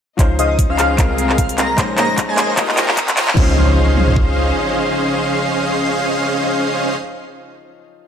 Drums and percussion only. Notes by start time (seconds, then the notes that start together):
0.19 kick, clap, closed hi-hat
0.39 closed hi-hat
0.59 kick, closed hi-hat
0.79 clap, closed hi-hat
0.98 kick, clap, closed hi-hat
1.18 closed hi-hat
1.29 clap
1.38 kick, closed hi-hat
1.49 closed hi-hat
1.58 clap, closed hi-hat
1.78 kick, clap, closed hi-hat
1.98 clap, closed hi-hat
2.18 kick, clap, closed hi-hat
2.38 clap, closed hi-hat
2.57 kick, clap, closed hi-hat
2.68 clap
2.77 clap, closed hi-hat
2.88 clap
2.97 kick, clap, closed hi-hat
3.08 clap, closed hi-hat
3.17 clap, closed hi-hat
3.28 clap
3.37 kick, crash
3.97 mid tom
4.08 floor tom
4.16 kick